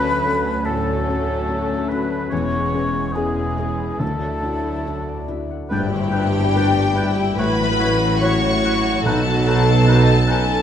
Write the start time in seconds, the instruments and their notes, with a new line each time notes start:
Already playing: cello section D2, double bass section D2, felt piano D2 C#4 F#4 A4, harp D3 A3 C#4 F#4 A4 A5, viola section F#3, french horn section F#3 C#4, violin section A3 C#4, oboe B4, clarinet B4, flute B5
0.04 harp C#5
0.25 felt piano C#4 F#4 A4, harp F#5
0.46 harp A5
0.65 felt piano A2, viola section F#3, violin section A3 C#4, oboe A4, clarinet A4, harp F#5, flute A5
0.86 harp A5
1.07 felt piano C#4 F#4 A4, harp C#5
1.27 harp F#4
1.48 harp C#4, felt piano C#4 F#4 A4
1.68 harp A3
1.89 harp C#4, felt piano C#4 F#4 A4, oboe B4, clarinet B4, flute B5
2.11 harp A3
2.30 double bass section E1, cello section E2, felt piano E2, viola section E3, harp E3, violin section G#3 C#4, french horn section G#3 B3, oboe C#5, clarinet C#5, flute C#6
2.52 harp B3
2.73 felt piano C#4 E4 G#4, harp E4
2.94 harp G#4
3.12 viola section E3, violin section G#3 C#4, felt piano C#4 E4, oboe G#4, harp B4, flute G#5
3.16 clarinet G#4, felt piano G#4
3.37 harp E5
3.58 felt piano C#4 E4 G#4, harp G#5
3.79 harp B5
3.99 felt piano D2, double bass section D2, cello section D2, timpani D3, harp D3, viola section F#3, french horn section F#3 E4, violin section A3 E4, oboe A4, clarinet A4, flute A5
4.22 harp A3
4.42 felt piano D4 E4 F#4, harp D4
4.66 harp E4
4.86 felt piano D4 E4 F#4, harp F#4
5.09 harp D5
5.28 felt piano D4 E4 F#4, harp E5
5.51 harp F#5
5.69 double bass section G1, felt piano G2, harp G2, cello section G2, french horn section G3 D4, clarinet D4, violin section E4 G4 G5, viola section G4, oboe B4, flute G6, tam-tam
5.94 harp D3
6.12 clarinet D4, harp D4, oboe B4, flute G6
6.35 harp G4
6.54 clarinet D4, violin section D4, felt piano G4 B4, oboe B4, harp B4, flute G6
6.77 harp D5
6.95 clarinet D4, violin section E4, oboe B4, harp G5, flute G6
7.19 harp B5
7.38 double bass section A1, felt piano A2, harp A2, cello section A2, french horn section F#3 E4, violin section E4 F#4 B5, clarinet E4, viola section B4, oboe C#5, flute F#6
7.59 harp E3
7.79 harp C#4, clarinet E4, violin section F#4, oboe C#5, flute F#6
8.01 harp F#4
8.20 clarinet E4, felt piano F#4 C#5, oboe C#5, harp C#5, viola section C#5, violin section C#6, flute F#6
8.43 harp F#4
8.63 clarinet E4, oboe C#5, harp F#5, flute F#6
8.84 harp C#6
9.04 double bass section B1, felt piano B1, cello section B2, harp B2, clarinet D#4, french horn section D#4, viola section A4, oboe B4, violin section A5, flute F#6
9.26 harp F#3
9.46 harp D#4, clarinet D#4, oboe B4, flute F#6
9.68 harp F#4
9.86 violin section D#4, clarinet D#4, felt piano F#4 B4, harp B4, oboe B4, flute F#6
10.08 harp D#5
10.26 violin section C#4, clarinet D#4, oboe B4, harp F#5, flute F#6
10.50 harp B5